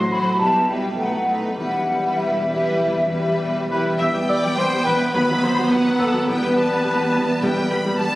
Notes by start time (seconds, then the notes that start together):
Already playing: A1 A2 F#3 A3 C5
0.00 F#4
0.10 F#3 F#4 C5 B5
0.20 F#3
0.39 B1 B2 G3 E4 B4 A5
0.58 G3
0.68 G3 E4 B4 G5
0.78 E4 B4
0.97 B1 B2 A3 D#4 B4 F#5
1.18 A3
1.28 A3 D#4 B4
1.37 D#4 B4
1.58 E1 E2 E3 G3 E4 B4 F#5
1.78 G3
1.89 G3 E4 B4
1.98 E4
2.19 E1 E2 G4 E5
2.39 E5
2.50 G3 E4 B4
2.59 B4
2.79 E1 E2 E3
2.99 G3
3.10 G3 E4 B4
3.19 E4
3.40 E1 E2 G4
3.60 E5
3.70 G3 E4 B4
3.80 B4
3.99 E1 E2 E3 G3 B3 E5 G5
4.14 E2 G3
4.28 E1 E2 G3 B4 D5
4.42 E2 G3 G4
4.57 E1 E2 G3 C5 B5
4.71 E2 G3 G5
4.85 E1 E2 G3 B4 B5
4.99 E5
5.14 D#2 D#3 F#3 B4 B5
5.29 D#2 F#3 D#4
5.41 D#2 F#3 F#4 C5
5.57 D#2 F#3 B4
5.70 D#2 F#3 B4 F#5
5.84 D#2 F#3
5.99 D#2 F#3 A4 F#5
6.13 D#2 F#3 F#4
6.27 E1 E2 E3 G3 B4 G5
6.41 E2 G3
6.56 E1 E2 G3 B4 A5
6.69 E2 G3 G4
6.84 E1 E2 G3 B5
7.00 E2 G3 G5
7.13 E1 E2 G3 B5
7.28 E5
7.41 E1 E2 E3 G3 G5
7.56 E2 G3
7.69 E1 E2 G3 B4 B5
7.84 E2 G3 G4
7.97 E1 E2 G3 A5 B5